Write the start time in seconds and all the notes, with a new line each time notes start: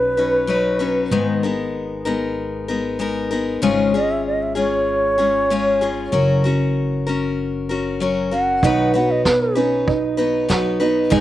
Already playing: B1 F#3 C#4 D#4 B4
0.17 F#3 C#4 D#4 B4
0.47 F#3 C#4 D#4 B4
0.79 F#3 C#4 D#4 B4
1.11 G#1 G#2 D#3 G#3 B3 D#4
1.43 G#3 B3 D#4 A#4
2.05 G#3 B3 D#4 A#4
2.68 G#3 B3 D#4 A#4
2.99 G#3 B3 D#4 A#4
3.31 G#3 B3 D#4 A#4
3.62 G#1 G#2 C#3 G#3 C#4 F4 G#4
3.94 G#3 C#4 F4 G#4 D#5
4.11 E5
4.27 D#5
4.43 E5
4.55 G#3 C#4 F4 G#4 C#5
5.18 G#3 C#4 F4 G#4
5.50 G#3 C#4 F4 G#4
5.81 G#3 C#4 F4 G#4
6.12 F#1 F#3 C#4 F#4 A#4
6.44 C#4 F#4 A#4
7.07 C#4 F#4 A#4
7.69 C#4 F#4 A#4
8.00 F#3 C#4 F#4 A#4
8.31 C#4 F#4 A#4 F#5
8.63 B1 B2 D#3 F#3 B3 D#4 B4, kick
8.94 F#3 B3 D#4 F#4 B4 F#5
9.11 D#5
9.25 B3 B4, kick, snare
9.55 F#3 B3 C#4 D#4 B4
9.87 D#4, kick
10.17 F#3 B3 D#4 B4
10.49 F#3 B3 D#4 F#4 B4, kick, snare
10.80 F#3 B3 D#4 B4
11.10 G#1 G#2 D#3 G#3 B3 D#4 G#4, kick